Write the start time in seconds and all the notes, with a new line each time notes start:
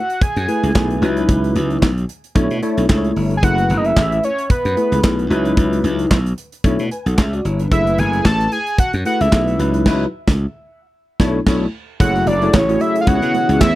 Already playing: F#5
0.10 closed hi-hat
0.21 G#5, muted slap bass stroke, kick, closed hi-hat
0.36 F#2, closed hi-hat
0.48 A3 E4 G#4 B4, closed hi-hat
0.63 C#2, closed hi-hat
0.75 B1 A3 E4 G#4 B4, kick, snare, clap
0.90 closed hi-hat
1.02 C#2 F#3 D#4 E4 B4, closed hi-hat
1.17 closed hi-hat
1.29 C#2, kick, closed hi-hat
1.44 closed hi-hat
1.55 C#2, closed hi-hat
1.70 closed hi-hat
1.82 B1, kick, snare, clap
1.98 closed hi-hat
2.09 closed hi-hat
2.24 closed hi-hat
2.35 B1 A3 D4 E4 C#5, kick, closed hi-hat
2.51 B2, closed hi-hat
2.62 A3 D4 E4 C#5, closed hi-hat
2.77 B1, closed hi-hat
2.89 C#2 A3 D4 E4 C5, kick, snare, clap
2.96 C#5
3.04 closed hi-hat
3.16 G1, open hi-hat
3.31 closed hi-hat
3.37 G#5
3.43 F#1 A3 E4 G#4 B4 F#5, kick, closed hi-hat
3.58 closed hi-hat
3.70 F#1, closed hi-hat
3.77 D#5
3.85 E5, closed hi-hat
3.97 A1, kick, snare, clap
4.12 closed hi-hat
4.24 C#5, closed hi-hat
4.38 closed hi-hat
4.50 B4, muted slap bass stroke, kick, closed hi-hat
4.65 F#2, closed hi-hat
4.77 A3 E4 G#4 B4, closed hi-hat
4.92 C#2, closed hi-hat
5.03 B1 A3 E4 G#4 B4, kick, snare, clap
5.19 closed hi-hat
5.30 C#2 F#3 D#4 E4 B4, closed hi-hat
5.45 closed hi-hat
5.57 C#2, kick, closed hi-hat
5.73 closed hi-hat
5.84 C#2, closed hi-hat
5.99 closed hi-hat
6.11 B1, kick, snare, clap
6.26 closed hi-hat
6.38 closed hi-hat
6.52 closed hi-hat
6.64 B1 A3 D4 E4 C#5, kick, closed hi-hat
6.79 B2, closed hi-hat
6.91 B4 G#5, closed hi-hat
7.06 B1 A4 F#5, closed hi-hat
7.18 C#2 G#4 E5, kick, snare, clap
7.33 F#4 D5, closed hi-hat
7.45 G1 E4 C#5, closed hi-hat
7.59 D4 B4, closed hi-hat
7.72 F#1 A3 E4 G#4 B4 E5, kick, closed hi-hat
7.87 closed hi-hat
7.98 F#1 G#5, closed hi-hat
8.13 closed hi-hat
8.25 A1 A5, kick, snare, clap
8.40 closed hi-hat
8.52 G#5, closed hi-hat
8.67 closed hi-hat
8.78 F#5, muted slap bass stroke, kick, closed hi-hat
8.93 F#2, closed hi-hat
9.05 A3 E4 G#4 B4 F#5, closed hi-hat
9.21 C#2 E5, closed hi-hat
9.32 B1 A3 E4 G#4 B4, kick, snare, clap
9.48 closed hi-hat
9.59 C#2 F#3 D#4 E4 B4, closed hi-hat
9.74 closed hi-hat
9.86 C#2 F#3 D#4 E4 B4, kick, snare, crash
10.28 C#2, kick, snare
11.20 B1 A3 D4 E4 C#5, kick, snare
11.46 B1 A3 D4 E4 C#5, kick, snare, crash
12.00 F#1 C#3 F#3 A3 E4 F#4 G#4 C#5 F#5, kick, closed hi-hat
12.15 closed hi-hat
12.27 F#1 D5, closed hi-hat, muted conga
12.42 A3 E4 F#4 G#4 C#5, closed hi-hat
12.54 A1 C#5, kick, snare, clap, high conga
12.68 A3 E4 F#4 G#4 C#5, closed hi-hat
12.80 E5, closed hi-hat, muted conga
12.96 closed hi-hat
13.01 F5
13.07 C#2 B2 E3 B3 C#4 E4 G#4 C#5 F#5, kick, closed hi-hat
13.22 C#3, closed hi-hat
13.34 closed hi-hat, muted conga
13.49 C#2, closed hi-hat
13.60 E2 E5, kick, snare, clap, high conga